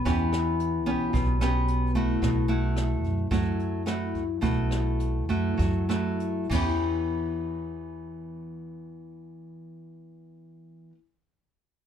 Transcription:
<<
  \new Staff \with { instrumentName = "Nylon-string guitar" } { \time 4/4 \key e \dorian \tempo 4 = 101 << { <b cis' g'>4. <b cis' g'>4 <b cis' g'>4 <a e' fis'>8~ | <a e' fis'>8 <a e' fis'>4. <a e' fis'>4 <a e' fis'>8 r8 | <a e' fis'>4. <a e' fis'>4 <a e' fis'>4 <e b cis' g'>8~ | <e b cis' g'>1~ |
<e b cis' g'>1 | } \\ { e2 b,2 | b,2 fis2 | b,2 fis4. r8 | r1 |
r1 | } >> }
  \new Staff \with { instrumentName = "Upright bass" } { \clef bass \time 4/4 \key e \dorian e,4. b,,8 b,,2 | b,,4. fis,8 fis,2 | b,,4. fis,8 fis,4. e,8~ | e,1~ |
e,1 | }
  \new DrumStaff \with { instrumentName = "Drums" } \drummode { \time 4/4 <hh bd>8 <hh ss>8 hh8 <hh bd>8 <hh bd>8 <hh ss>8 hh8 <hh bd>8 | <hh bd ss>8 hh8 <hh ss>8 <hh bd>8 <hh bd>8 hh8 <hh ss>8 <hh bd>8 | <hh bd>8 <hh ss>8 hh8 <hh bd>8 <hh bd>8 <hh ss>8 hh8 <cymc bd>8 | r4 r4 r4 r4 |
r4 r4 r4 r4 | }
>>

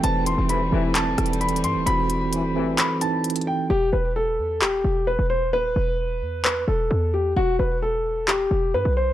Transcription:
<<
  \new Staff \with { instrumentName = "Grand piano" } { \time 4/4 \key e \minor \tempo 4 = 131 a''8 c'''8 b''4 a''4 b''8 c'''8 | b''2 b''8 a''4 g''8 | g'8 b'8 a'4 g'4 b'8 c''8 | b'2 b'8 a'4 g'8 |
fis'8 b'8 a'4 g'4 b'8 c''8 | }
  \new Staff \with { instrumentName = "Tine electric piano" } { \time 4/4 \key e \minor <e c' b'>4~ <e c' b'>16 r16 <e c' a'>16 <e c' e'>8. <e c' a'>4~ <e c' a'>16 r16 | <e c' fis'>4~ <e c' fis'>16 r16 <e c' a'>4 <e c' dis'>4~ <e c' dis'>16 r16 | r1 | r1 |
r1 | }
  \new Staff \with { instrumentName = "String section" } { \clef bass \time 4/4 \key e \minor <e g a c'>1~ | <e g a c'>1 | r1 | r1 |
r1 | }
  \new Staff \with { instrumentName = "Brass ensemble" } { \clef bass \time 4/4 \key e \minor r4 <a, c e>16 r16 <a, c e>8. r4. r16 | r4 <a, c e>16 r16 <a, c e>8. r4. r16 | r1 | r1 |
r1 | }
  \new Staff \with { instrumentName = "808-style bass" } { \clef bass \time 4/4 \key e \minor e,,8. e,,8. e,,4 e,,4 g,16 e,,16 | e,,4. g,,8 r2 | e,,8 e,,4 e,8 e,,8 e,,8. e,,8. | dis,,8 e,,4 e,4 e,,8 e,4 |
e,,8 e,,2 e,,8 g,16 b,,8. | }
  \new DrumStaff \with { instrumentName = "Drums" } \drummode { \time 4/4 hh8 hh8 hh4 \tuplet 3/2 { <hc hh>16 r16 r16 <hh ss>16 hh16 hh16 hh16 hh16 hh16 hh16 r16 r16 } | hh8 hh8 hh4 <hc hh>8 hh8 hh32 hh32 hh32 hh8 r32 | r4 r4 hc4 r4 | r4 r4 hc4 r4 |
r4 r4 hc4 r4 | }
>>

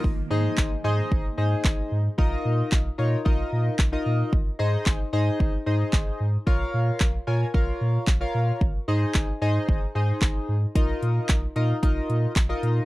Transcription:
<<
  \new Staff \with { instrumentName = "Synth keys" } { \time 4/4 \key aes \major \tempo 4 = 112 r8 <ees' aes' c'' ees''>8. r16 <ees' aes' c'' ees''>8. r16 <ees' aes' c'' ees''>4 r8 | <ees' f' bes' ees''>4 r8 <ees' f' bes' des''>16 r16 <ees' f' bes' ees''>4 r16 <ees' f' bes' ees''>8. | r8 <ees' aes' c'' ees''>8. r16 <ees' aes' c'' ees''>8. r16 <ees' aes' c'' ees''>4 r8 | <f' bes' des'' f''>4 r8 <f' bes' des'' aes''>16 r16 <f' bes' des'' f''>4 r16 <f' bes' des'' f''>8. |
r8 <ees' aes' c'' ees''>8. r16 <ees' aes' c'' ees''>8. r16 <ees' aes' c'' ees''>4 r8 | <ees' f' bes' ees''>4 r8 <ees' f' bes' ees''>16 r16 <ees' f' bes' ees''>4 r16 <ees' f' bes' ees''>8. | }
  \new Staff \with { instrumentName = "Sub bass" } { \clef bass \time 4/4 \key aes \major aes,,8 aes,8 aes,,8 aes,8 aes,,8 aes,8 aes,,8 aes,8 | bes,,8 bes,8 bes,,8 bes,8 bes,,8 bes,8 bes,,8 bes,8 | aes,,8 aes,8 aes,,8 aes,8 aes,,8 aes,8 aes,,8 aes,8 | bes,,8 bes,8 bes,,8 bes,8 bes,,8 bes,8 bes,,8 bes,8 |
aes,,8 aes,8 aes,,8 aes,8 aes,,8 aes,8 aes,,8 aes,8 | bes,,8 bes,8 bes,,8 bes,8 bes,,8 bes,8 bes,,8 bes,8 | }
  \new DrumStaff \with { instrumentName = "Drums" } \drummode { \time 4/4 bd4 <hc bd>4 bd4 <hc bd>4 | bd4 <hc bd>4 bd4 <hc bd>4 | bd4 <hc bd>4 bd4 <hc bd>4 | bd4 <hc bd>4 bd4 <hc bd>4 |
bd4 <hc bd>4 bd4 <hc bd>4 | <hh bd>8 hh8 <hc hh bd>8 hh8 <hh bd>8 hh8 <hc hh bd>8 hh8 | }
>>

